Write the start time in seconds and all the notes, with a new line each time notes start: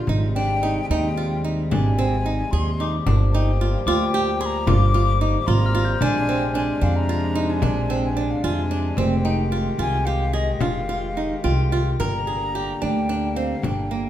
0.07 G#1 C3 G3 G#3 D#4, frame drum
0.35 D4 G5
0.63 D#4
0.89 D#2 D#4 A5, frame drum
0.93 G5
1.17 F4, frame drum
1.44 D#4
1.71 G#1 D4 G#5, frame drum
1.98 C4
2.26 D#4
2.50 D#2 G#4 C6
2.80 D#4 D6
3.06 G1 F3 A#3 D4, frame drum
3.31 D#4 G5 A5
3.61 F4
3.86 D2 F4 G5 D6, frame drum
4.14 G4, frame drum
4.40 G#4 C6
4.45 A#5
4.67 G1 F4 D6, frame drum
4.94 F4
5.21 D#4
5.46 G#1 F4 A#5 C6
5.66 F6
5.75 F4
5.85 G6
6.01 A#1 C3 G#3 D4 G#5, frame drum
6.29 C4
6.54 D4 G#5
6.81 F2 D4 F5
6.95 A#5
7.08 F4, frame drum
7.35 D#4
7.49 G#5
7.62 A#1 D4, frame drum
7.90 C4
8.04 G#5
8.17 D4
8.30 F5
8.43 F2 F4 G#5
8.71 D4
8.97 F1 D#3 C4 G4 G5, frame drum
9.25 D#4 G5
9.52 F4
9.78 C2 F4 G#5, frame drum
10.05 G4 F5
10.33 G#4 D#5
10.60 F1 F4 F5, frame drum
10.89 F4
11.17 D#4, frame drum
11.44 C2 F4 G5
11.72 F4
12.00 G1 D3 G3 A#3 A#4 A#5, frame drum
12.27 G#4, frame drum
12.55 G4
12.81 D2 D4 G5
13.09 D4, frame drum
13.36 C4 F5, frame drum
13.62 G1 D4 G5, frame drum
13.91 A#3, frame drum